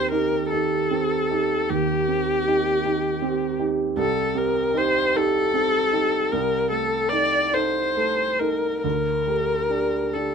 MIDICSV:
0, 0, Header, 1, 3, 480
1, 0, Start_track
1, 0, Tempo, 788436
1, 1510, Tempo, 748130
1, 2470, Time_signature, 12, 3, 24, 8
1, 2470, Tempo, 784314
1, 4390, Tempo, 869565
1, 6174, End_track
2, 0, Start_track
2, 0, Title_t, "Viola"
2, 0, Program_c, 0, 41
2, 0, Note_on_c, 0, 72, 56
2, 62, Note_off_c, 0, 72, 0
2, 66, Note_on_c, 0, 70, 58
2, 297, Note_off_c, 0, 70, 0
2, 300, Note_on_c, 0, 69, 53
2, 1032, Note_on_c, 0, 67, 62
2, 1041, Note_off_c, 0, 69, 0
2, 2230, Note_off_c, 0, 67, 0
2, 2474, Note_on_c, 0, 69, 66
2, 2714, Note_on_c, 0, 70, 57
2, 2723, Note_off_c, 0, 69, 0
2, 2955, Note_on_c, 0, 72, 59
2, 2964, Note_off_c, 0, 70, 0
2, 3199, Note_on_c, 0, 69, 68
2, 3208, Note_off_c, 0, 72, 0
2, 3902, Note_on_c, 0, 70, 57
2, 3911, Note_off_c, 0, 69, 0
2, 4138, Note_off_c, 0, 70, 0
2, 4141, Note_on_c, 0, 69, 55
2, 4374, Note_on_c, 0, 74, 58
2, 4383, Note_off_c, 0, 69, 0
2, 4617, Note_on_c, 0, 72, 51
2, 4625, Note_off_c, 0, 74, 0
2, 5097, Note_on_c, 0, 70, 50
2, 5105, Note_off_c, 0, 72, 0
2, 5332, Note_off_c, 0, 70, 0
2, 5335, Note_on_c, 0, 70, 60
2, 6054, Note_on_c, 0, 69, 44
2, 6062, Note_off_c, 0, 70, 0
2, 6174, Note_off_c, 0, 69, 0
2, 6174, End_track
3, 0, Start_track
3, 0, Title_t, "Grand piano"
3, 0, Program_c, 1, 0
3, 0, Control_c, 1, 64, 127
3, 0, Note_on_c, 1, 39, 42
3, 0, Note_on_c, 1, 60, 24
3, 0, Note_on_c, 1, 67, 29
3, 70, Note_on_c, 1, 63, 32
3, 75, Note_off_c, 1, 67, 0
3, 75, Note_on_c, 1, 67, 34
3, 287, Note_off_c, 1, 63, 0
3, 289, Note_off_c, 1, 67, 0
3, 315, Note_on_c, 1, 63, 26
3, 317, Note_on_c, 1, 67, 31
3, 529, Note_off_c, 1, 63, 0
3, 530, Note_off_c, 1, 67, 0
3, 553, Note_off_c, 1, 60, 0
3, 553, Note_on_c, 1, 60, 29
3, 555, Note_on_c, 1, 67, 33
3, 769, Note_off_c, 1, 60, 0
3, 769, Note_off_c, 1, 67, 0
3, 794, Note_on_c, 1, 63, 31
3, 795, Note_on_c, 1, 67, 35
3, 1010, Note_off_c, 1, 39, 0
3, 1010, Note_off_c, 1, 63, 0
3, 1011, Note_off_c, 1, 67, 0
3, 1034, Note_on_c, 1, 39, 37
3, 1266, Note_on_c, 1, 67, 32
3, 1267, Note_on_c, 1, 60, 27
3, 1482, Note_off_c, 1, 67, 0
3, 1483, Note_off_c, 1, 60, 0
3, 1509, Note_on_c, 1, 63, 31
3, 1511, Note_on_c, 1, 67, 35
3, 1728, Note_off_c, 1, 63, 0
3, 1729, Note_off_c, 1, 67, 0
3, 1749, Note_on_c, 1, 67, 33
3, 1750, Note_on_c, 1, 63, 34
3, 1966, Note_off_c, 1, 67, 0
3, 1967, Note_off_c, 1, 63, 0
3, 1984, Note_on_c, 1, 60, 34
3, 1987, Note_on_c, 1, 67, 34
3, 2202, Note_off_c, 1, 60, 0
3, 2203, Note_off_c, 1, 67, 0
3, 2224, Note_on_c, 1, 67, 36
3, 2225, Note_on_c, 1, 63, 31
3, 2443, Note_off_c, 1, 67, 0
3, 2444, Note_off_c, 1, 63, 0
3, 2446, Note_off_c, 1, 39, 0
3, 2462, Note_on_c, 1, 36, 44
3, 2481, Control_c, 1, 64, 0
3, 2580, Control_c, 1, 64, 127
3, 2695, Note_on_c, 1, 67, 36
3, 2697, Note_on_c, 1, 60, 31
3, 2922, Note_off_c, 1, 67, 0
3, 2923, Note_off_c, 1, 60, 0
3, 2938, Note_on_c, 1, 63, 36
3, 2942, Note_on_c, 1, 67, 38
3, 3164, Note_off_c, 1, 63, 0
3, 3166, Note_off_c, 1, 67, 0
3, 3191, Note_on_c, 1, 63, 33
3, 3195, Note_on_c, 1, 67, 35
3, 3407, Note_off_c, 1, 63, 0
3, 3409, Note_off_c, 1, 67, 0
3, 3425, Note_on_c, 1, 60, 32
3, 3425, Note_on_c, 1, 67, 37
3, 3642, Note_off_c, 1, 60, 0
3, 3642, Note_off_c, 1, 67, 0
3, 3665, Note_on_c, 1, 63, 32
3, 3669, Note_on_c, 1, 67, 36
3, 3881, Note_off_c, 1, 36, 0
3, 3882, Note_off_c, 1, 63, 0
3, 3884, Note_off_c, 1, 67, 0
3, 3908, Note_on_c, 1, 36, 45
3, 3918, Control_c, 1, 64, 0
3, 4027, Control_c, 1, 64, 127
3, 4145, Note_on_c, 1, 57, 29
3, 4150, Note_on_c, 1, 69, 32
3, 4365, Note_off_c, 1, 57, 0
3, 4368, Note_off_c, 1, 69, 0
3, 4393, Note_on_c, 1, 63, 31
3, 4394, Note_on_c, 1, 69, 31
3, 4600, Note_off_c, 1, 63, 0
3, 4601, Note_off_c, 1, 69, 0
3, 4622, Note_on_c, 1, 69, 34
3, 4624, Note_on_c, 1, 63, 30
3, 4839, Note_off_c, 1, 63, 0
3, 4839, Note_off_c, 1, 69, 0
3, 4861, Note_on_c, 1, 57, 29
3, 4862, Note_on_c, 1, 69, 34
3, 5080, Note_off_c, 1, 57, 0
3, 5080, Note_off_c, 1, 69, 0
3, 5103, Note_on_c, 1, 63, 30
3, 5107, Note_on_c, 1, 69, 31
3, 5319, Note_off_c, 1, 36, 0
3, 5320, Note_off_c, 1, 63, 0
3, 5322, Note_off_c, 1, 69, 0
3, 5343, Note_on_c, 1, 38, 40
3, 5354, Control_c, 1, 64, 0
3, 5443, Control_c, 1, 64, 127
3, 5579, Note_on_c, 1, 57, 24
3, 5580, Note_on_c, 1, 67, 27
3, 5799, Note_off_c, 1, 57, 0
3, 5799, Note_off_c, 1, 67, 0
3, 5814, Note_on_c, 1, 62, 28
3, 5816, Note_on_c, 1, 67, 29
3, 6040, Note_off_c, 1, 62, 0
3, 6041, Note_off_c, 1, 67, 0
3, 6063, Note_on_c, 1, 62, 23
3, 6067, Note_on_c, 1, 67, 26
3, 6174, Note_off_c, 1, 38, 0
3, 6174, Note_off_c, 1, 62, 0
3, 6174, Note_off_c, 1, 67, 0
3, 6174, End_track
0, 0, End_of_file